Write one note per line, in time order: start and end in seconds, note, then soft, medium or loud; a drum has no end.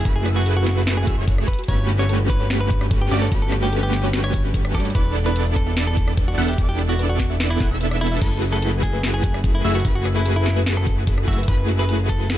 0.00 closed hi-hat medium
0.05 1.05 A3 medium
0.05 1.05 E4 medium
0.05 0.10 E4 medium
0.05 1.05 F#4 medium
0.05 1.05 G#4 medium
0.05 1.05 B4 loud
0.05 1.05 B5 loud
0.05 kick loud
0.05 closed hi-hat medium
0.16 0.28 G#4 medium
0.26 0.32 F#4 medium
0.26 cross-stick medium
0.26 closed hi-hat medium
0.36 0.48 F#4 medium
0.46 0.51 G#4 medium
0.46 closed hi-hat medium
0.57 0.81 F#4 medium
0.57 0.63 A4 medium
0.67 snare medium
0.67 closed hi-hat medium
0.77 0.80 E4 medium
0.87 0.91 E4 medium
0.87 snare loud
0.87 closed hi-hat medium
0.97 1.16 G#4 medium
0.97 cross-stick medium
1.07 1.16 F#1 loud
1.07 1.15 A3 medium
1.07 1.15 E4 medium
1.07 1.15 F#4 medium
1.07 1.14 F#4 medium
1.07 1.15 G#4 medium
1.07 1.15 E5 medium
1.07 1.15 E6 medium
1.07 kick loud
1.07 closed hi-hat medium
1.18 1.45 F#1 loud
1.18 1.47 A3 medium
1.18 1.47 E4 medium
1.18 1.47 F#4 medium
1.18 1.47 G#4 medium
1.18 1.47 C#5 medium
1.18 1.47 C#6 medium
1.28 1.32 G#4 medium
1.28 kick loud
1.28 closed hi-hat medium
1.38 1.44 A4 medium
1.38 cross-stick medium
1.48 1.61 B4 medium
1.48 kick medium
1.48 closed hi-hat soft
1.53 closed hi-hat medium
1.59 1.61 F#4 medium
1.59 closed hi-hat soft
1.64 closed hi-hat medium
1.68 3.09 G1 medium
1.68 3.09 A3 medium
1.68 3.09 C#4 medium
1.68 1.73 F#4 medium
1.68 3.09 F#4 medium
1.68 3.09 G4 medium
1.68 3.09 B4 loud
1.68 1.87 C#5 loud
1.68 3.09 B5 loud
1.68 kick loud
1.68 closed hi-hat medium
1.89 1.95 G4 medium
1.89 closed hi-hat medium
1.99 2.18 C#5 medium
2.09 2.14 A4 medium
2.09 closed hi-hat medium
2.20 2.26 B4 medium
2.30 2.48 B4 loud
2.30 kick medium
2.30 closed hi-hat medium
2.40 2.44 C#5 loud
2.50 2.54 F#4 medium
2.50 snare loud
2.50 closed hi-hat medium
2.61 2.85 B4 loud
2.71 2.77 G4 medium
2.71 kick loud
2.71 closed hi-hat medium
2.81 cross-stick medium
2.91 2.95 A4 medium
2.91 kick loud
2.91 closed hi-hat medium
3.01 3.14 G4 medium
3.01 3.08 B4 medium
3.11 3.30 G1 loud
3.11 3.24 A3 medium
3.11 3.24 C#4 medium
3.11 3.24 F#4 medium
3.11 3.24 G4 medium
3.11 3.24 D5 loud
3.11 3.24 D6 loud
3.11 closed hi-hat soft
3.17 closed hi-hat medium
3.22 3.34 A4 medium
3.22 3.26 C#5 loud
3.22 closed hi-hat soft
3.27 closed hi-hat medium
3.32 4.76 G1 loud
3.32 4.72 A3 medium
3.32 4.72 C#4 medium
3.32 3.36 F#4 medium
3.32 4.72 F#4 medium
3.32 4.72 G4 medium
3.32 4.72 B4 loud
3.32 4.72 B5 loud
3.32 kick loud
3.32 closed hi-hat medium
3.42 3.54 A4 medium
3.52 3.59 G4 medium
3.52 cross-stick medium
3.52 closed hi-hat medium
3.63 3.75 G4 medium
3.73 3.77 A4 medium
3.73 closed hi-hat medium
3.83 4.08 G4 medium
3.83 3.89 B4 medium
3.93 snare medium
3.93 closed hi-hat medium
4.04 4.08 C#5 loud
4.13 4.18 F#4 medium
4.13 snare loud
4.13 closed hi-hat medium
4.24 4.42 C#5 loud
4.24 cross-stick medium
4.34 4.40 G4 medium
4.34 kick medium
4.34 closed hi-hat medium
4.54 4.58 A4 medium
4.54 kick loud
4.54 closed hi-hat medium
4.65 4.71 B4 medium
4.65 cross-stick medium
4.75 4.93 G2 loud
4.75 4.87 A3 medium
4.75 4.87 C#4 medium
4.75 4.87 F#4 medium
4.75 4.87 G4 medium
4.75 4.87 A4 medium
4.75 4.87 D5 loud
4.75 4.87 D6 loud
4.75 kick medium
4.75 closed hi-hat soft
4.80 closed hi-hat medium
4.85 4.89 C#5 loud
4.85 closed hi-hat soft
4.90 closed hi-hat medium
4.95 6.36 E1 loud
4.95 6.36 B3 medium
4.95 6.36 D4 medium
4.95 4.99 E4 medium
4.95 6.36 E4 medium
4.95 6.36 A4 medium
4.95 5.14 B4 loud
4.95 6.36 D5 loud
4.95 6.36 D6 loud
4.95 kick loud
4.95 closed hi-hat medium
5.15 5.22 A4 medium
5.15 closed hi-hat medium
5.26 5.44 B4 loud
5.36 5.40 B4 medium
5.36 closed hi-hat medium
5.46 5.52 D5 medium
5.56 5.75 A4 loud
5.56 kick medium
5.56 closed hi-hat medium
5.67 5.71 E5 loud
5.77 5.81 E4 medium
5.77 snare loud
5.77 closed hi-hat medium
5.87 6.12 A4 medium
5.97 6.04 A4 medium
5.97 kick medium
5.97 closed hi-hat medium
6.08 cross-stick medium
6.17 6.22 B4 medium
6.17 kick loud
6.17 closed hi-hat medium
6.28 6.40 F#4 medium
6.28 6.34 D5 medium
6.38 6.56 E1 loud
6.38 6.50 B3 loud
6.38 6.50 D4 medium
6.38 6.50 E4 medium
6.38 6.50 A4 medium
6.38 6.50 F#5 loud
6.38 6.50 F#6 loud
6.38 closed hi-hat soft
6.43 closed hi-hat medium
6.48 6.60 G4 medium
6.48 6.52 E5 loud
6.48 closed hi-hat medium
6.53 closed hi-hat medium
6.58 7.58 E1 loud
6.58 7.58 B3 medium
6.58 7.58 D4 medium
6.58 6.63 E4 medium
6.58 7.58 E4 medium
6.58 7.58 A4 medium
6.58 7.58 D5 loud
6.58 7.58 D6 loud
6.58 kick loud
6.58 closed hi-hat medium
6.69 6.81 G4 medium
6.79 6.85 A4 medium
6.79 cross-stick medium
6.79 closed hi-hat medium
6.89 7.01 F#4 medium
6.99 7.03 B4 medium
6.99 closed hi-hat medium
7.09 7.34 F#4 medium
7.09 7.16 D5 medium
7.20 kick medium
7.20 snare medium
7.20 closed hi-hat medium
7.30 7.34 E5 loud
7.40 7.44 E4 medium
7.40 snare loud
7.40 closed hi-hat medium
7.50 7.69 E4 medium
7.50 cross-stick medium
7.60 7.69 E1 medium
7.60 7.68 B3 medium
7.60 7.68 D4 medium
7.60 7.68 E4 medium
7.60 7.67 A4 medium
7.60 7.68 A4 medium
7.60 7.68 F#5 medium
7.60 7.68 F#6 medium
7.60 kick loud
7.60 snare medium
7.60 closed hi-hat medium
7.71 8.20 E1 loud
7.71 8.19 B3 medium
7.71 8.19 D4 medium
7.71 8.19 E4 medium
7.71 8.19 A4 medium
7.71 8.19 E5 loud
7.71 8.19 E6 loud
7.81 7.85 B4 medium
7.81 closed hi-hat medium
7.91 7.97 D5 medium
7.91 cross-stick medium
8.01 8.14 E4 loud
8.01 closed hi-hat medium
8.06 closed hi-hat medium
8.12 8.16 E5 loud
8.12 closed hi-hat medium
8.17 closed hi-hat medium
8.22 9.62 F#1 loud
8.22 9.62 A3 medium
8.22 9.62 E4 medium
8.22 8.26 E4 medium
8.22 9.62 F#4 medium
8.22 9.62 G#4 medium
8.22 8.40 A4 loud
8.22 9.62 B4 medium
8.22 9.62 B5 loud
8.22 kick loud
8.22 closed hi-hat medium
8.22 crash medium
8.42 8.49 F#4 medium
8.42 closed hi-hat medium
8.52 8.71 A4 loud
8.62 8.67 G#4 medium
8.62 closed hi-hat medium
8.73 8.79 A4 medium
8.83 9.01 G#4 loud
8.83 kick medium
8.83 closed hi-hat medium
8.93 8.97 B4 loud
9.03 9.08 E4 medium
9.03 snare loud
9.03 closed hi-hat medium
9.14 9.38 G#4 loud
9.24 9.30 F#4 medium
9.24 kick loud
9.24 closed hi-hat medium
9.34 cross-stick medium
9.44 9.48 G#4 medium
9.44 kick loud
9.44 closed hi-hat medium
9.55 9.67 E4 medium
9.55 9.61 A4 medium
9.64 9.83 F#1 loud
9.64 9.77 A3 loud
9.64 9.77 E4 medium
9.64 9.77 F#4 medium
9.64 9.77 G#4 medium
9.64 9.77 E5 loud
9.64 9.77 E6 loud
9.64 closed hi-hat soft
9.70 closed hi-hat medium
9.75 9.87 F#4 medium
9.75 9.79 B4 loud
9.75 closed hi-hat medium
9.80 closed hi-hat medium
9.85 11.26 F#1 loud
9.85 11.25 A3 medium
9.85 11.25 E4 medium
9.85 9.89 E4 medium
9.85 11.25 F#4 medium
9.85 11.25 G#4 medium
9.85 11.25 B4 loud
9.85 11.25 B5 loud
9.85 kick loud
9.85 closed hi-hat medium
9.95 10.07 F#4 medium
10.05 10.12 F#4 medium
10.05 cross-stick medium
10.05 closed hi-hat medium
10.16 10.28 E4 medium
10.26 10.30 G#4 medium
10.26 closed hi-hat medium
10.36 10.61 E4 loud
10.36 10.42 A4 medium
10.46 snare medium
10.46 closed hi-hat medium
10.57 10.61 B4 loud
10.66 10.71 E4 medium
10.66 snare loud
10.66 closed hi-hat medium
10.77 10.96 A4 loud
10.77 cross-stick medium
10.87 10.93 F#4 medium
10.87 kick loud
10.87 closed hi-hat medium
11.07 11.12 G#4 medium
11.07 kick loud
11.07 closed hi-hat medium
11.18 11.24 A4 medium
11.18 cross-stick medium
11.28 11.46 F#1 loud
11.28 11.40 A3 loud
11.28 11.40 E4 medium
11.28 11.40 F#4 medium
11.28 11.40 F#4 loud
11.28 11.40 G#4 medium
11.28 11.40 E5 loud
11.28 11.40 E6 loud
11.28 kick medium
11.28 closed hi-hat soft
11.33 closed hi-hat medium
11.38 11.42 B4 loud
11.38 closed hi-hat medium
11.43 closed hi-hat medium
11.48 12.38 F#1 medium
11.48 12.38 A3 medium
11.48 11.52 E4 medium
11.48 12.38 E4 medium
11.48 12.38 F#4 medium
11.48 12.38 G#4 medium
11.48 12.38 B4 loud
11.48 11.67 B4 loud
11.48 12.38 B5 loud
11.48 kick loud
11.48 closed hi-hat medium
11.69 11.75 F#4 medium
11.69 closed hi-hat medium
11.79 11.98 B4 medium
11.89 11.93 G#4 medium
11.89 closed hi-hat medium
11.99 12.06 A4 medium
12.09 12.28 A4 loud
12.09 kick medium
12.09 closed hi-hat medium
12.20 12.24 B4 loud
12.30 12.34 E4 medium
12.30 snare loud
12.30 closed hi-hat medium